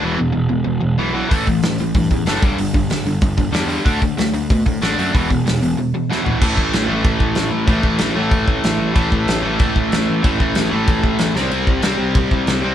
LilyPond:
<<
  \new Staff \with { instrumentName = "Overdriven electric guitar" } { \clef bass \time 4/4 \key e \dorian \tempo 4 = 188 <e, b, e>8 <e, b,>8 <e, b,>8 <e, b,>8 <e, b,>8 <e, b,>8 <e, b, e>8 <e, b, e>8 | <a, e a>8 <a, e>8 <a, e>8 <a, e>8 <a, e>8 <a, e>8 <a, e a>8 <g, d g>8 | <g, d>8 <g, d>8 <g, d>8 <g, d>8 <g, d>8 <g, d>8 <g, d g>8 <g, d g>8 | <d a d'>8 <d a>8 <d a>8 <d a>8 <d a>8 <d a>8 <d a d'>8 <d a d'>8 |
<e, b, e>8 <e, b,>8 <e, b,>8 <e, b,>8 <e, b,>8 <e, b,>8 <e, b, e>8 <e, b, e>8 | <a, e a>4. <a, e a>2~ <a, e a>8 | <a, e a>4. <a, e a>2~ <a, e a>8 | <a, e a>4. <a, e a>2~ <a, e a>8 |
<a, e a>4. <a, e a>2 <c g c'>8~ | <c g c'>4 <c g c'>2~ <c g c'>8 <c g c'>8 | }
  \new Staff \with { instrumentName = "Picked electric bass" } { \clef bass \time 4/4 \key e \dorian e,,8 e,,8 e,,8 e,,8 e,,8 e,,8 b,,4 | a,,8 a,,8 a,,8 a,,8 g,8 e,8 fis,,8 g,,8 | g,,8 g,,8 g,,8 g,,8 g,,8 g,,8 e,4 | d,8 d,8 d,8 d,8 b,8 a,8 a,,8 fis,8 |
e,,8 e,,8 e,,8 e,,8 r2 | a,,8 a,,8 a,,8 a,,8 a,,8 a,,8 a,,8 a,,8 | a,,8 a,,8 a,,8 a,,8 a,,8 a,,8 a,,8 a,,8 | a,,8 a,,8 a,,8 a,,8 a,,8 a,,8 a,,8 a,,8 |
a,,8 a,,8 a,,8 a,,8 a,,8 a,,8 a,,8 c,8 | c,8 c,8 c,8 c,8 c,8 c,8 c,8 c,8 | }
  \new DrumStaff \with { instrumentName = "Drums" } \drummode { \time 4/4 r4 r4 r4 r4 | <hho bd>8 <hho bd>8 <hho sn>8 hho8 <hho bd>8 <hho bd>8 <hho sn>8 <hho bd>8 | hho8 <hho bd>8 <hho sn>8 hho8 <hho bd>8 <hho bd>8 <hho sn>8 hho8 | <hho bd>8 <hho bd>8 <hho sn>8 hho8 <hho bd>8 <hho bd>8 <hho sn>8 hho8 |
<hho bd>8 <hho bd>8 <hho sn>8 hho8 r4 sn8 tomfh8 | <cymc bd>8 bd8 <cymc sn>4 <cymc bd>8 bd8 <cymc sn>4 | <cymc bd>8 bd8 <cymc sn>4 <cymc bd>8 bd8 <cymc sn>4 | <cymc bd>8 bd8 <cymc sn>4 <cymc bd>8 bd8 <cymc sn>4 |
<cymc bd>8 bd8 <cymc sn>4 <cymc bd>8 bd8 <cymc sn>8 sn8 | cymc8 bd8 <cymc sn>4 <cymc bd>8 bd8 <cymc sn>4 | }
>>